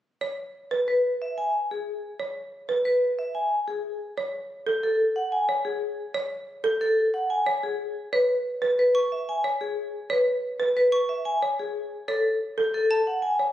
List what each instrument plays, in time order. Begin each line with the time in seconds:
0.21 marimba C#5
0.71 marimba B4
0.88 vibraphone B4
1.22 vibraphone E5
1.38 vibraphone G#5
1.71 vibraphone G#4
2.20 marimba C#5
2.69 marimba B4
2.85 vibraphone B4
3.19 vibraphone E5
3.35 vibraphone G#5
3.68 vibraphone G#4
4.18 marimba C#5
4.67 marimba A4
4.83 vibraphone A4
5.16 vibraphone F#5
5.32 vibraphone G#5
5.49 marimba C#5
5.65 vibraphone G#4
6.14 marimba C#5
6.64 marimba A4
6.81 vibraphone A4
7.14 vibraphone F#5
7.30 vibraphone G#5
7.46 marimba C#5
7.63 vibraphone G#4
8.13 vibraphone B4, marimba C#5
8.62 marimba B4
8.79 vibraphone B4
8.95 xylophone C#6
9.12 vibraphone E5
9.29 vibraphone G#5
9.44 marimba C#5
9.61 vibraphone G#4
10.10 vibraphone B4, marimba C#5
10.60 marimba B4
10.77 vibraphone B4
10.92 xylophone C#6
11.09 vibraphone E5
11.25 vibraphone G#5
11.43 marimba C#5
11.59 vibraphone G#4
12.08 vibraphone A4, marimba C#5
12.58 marimba A4
12.74 vibraphone A4
12.91 xylophone A5
13.07 vibraphone F#5
13.22 vibraphone G#5
13.39 marimba C#5